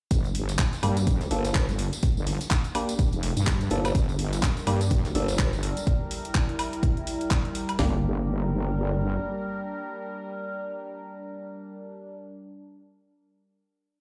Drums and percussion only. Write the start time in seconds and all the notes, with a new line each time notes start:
0.11 kick, closed hi-hat, tambourine
0.24 closed hi-hat, tambourine
0.35 closed hi-hat, open hi-hat
0.49 snare, closed hi-hat, tambourine
0.59 kick, snare, clap, closed hi-hat, tambourine
0.73 snare, closed hi-hat, tambourine
0.83 closed hi-hat, open hi-hat, high woodblock
0.97 closed hi-hat, tambourine
1.07 kick, closed hi-hat
1.21 snare, closed hi-hat, tambourine
1.31 closed hi-hat, open hi-hat
1.44 snare, closed hi-hat, tambourine
1.55 kick, snare, clap, closed hi-hat, tambourine
1.69 snare, closed hi-hat, tambourine
1.78 closed hi-hat, open hi-hat
1.93 closed hi-hat, tambourine
2.03 kick, closed hi-hat, tambourine
2.17 tambourine
2.27 snare, open hi-hat
2.41 snare, closed hi-hat, tambourine
2.51 kick, snare, clap, closed hi-hat, tambourine
2.64 closed hi-hat, tambourine
2.75 closed hi-hat, open hi-hat, high woodblock
2.89 closed hi-hat, tambourine
2.99 kick, closed hi-hat, tambourine
3.12 closed hi-hat, tambourine
3.23 snare, closed hi-hat, open hi-hat
3.37 closed hi-hat, tambourine
3.47 kick, snare, clap, closed hi-hat, tambourine
3.61 closed hi-hat, tambourine
3.70 closed hi-hat, open hi-hat
3.85 closed hi-hat, tambourine, high woodblock
3.95 kick, closed hi-hat, tambourine
4.09 closed hi-hat, tambourine
4.19 closed hi-hat, open hi-hat
4.33 snare, closed hi-hat, tambourine
4.43 kick, snare, clap, closed hi-hat, tambourine
4.57 snare, closed hi-hat, tambourine
4.67 closed hi-hat, open hi-hat, high woodblock
4.81 closed hi-hat, tambourine
4.90 kick, closed hi-hat, tambourine
5.05 snare, closed hi-hat, tambourine
5.15 closed hi-hat, open hi-hat
5.28 snare, closed hi-hat, tambourine
5.38 kick, snare, clap, closed hi-hat
5.53 snare, closed hi-hat, tambourine
5.63 closed hi-hat, open hi-hat
5.77 closed hi-hat, tambourine
5.87 kick, closed hi-hat
6.11 open hi-hat
6.25 closed hi-hat
6.35 kick, clap, closed hi-hat
6.49 closed hi-hat
6.59 open hi-hat, high woodblock
6.73 closed hi-hat
6.83 kick, closed hi-hat
6.97 closed hi-hat
7.07 open hi-hat
7.21 closed hi-hat
7.31 kick, clap, closed hi-hat
7.45 closed hi-hat
7.55 open hi-hat
7.69 closed hi-hat, high woodblock
7.79 snare, floor tom, open hi-hat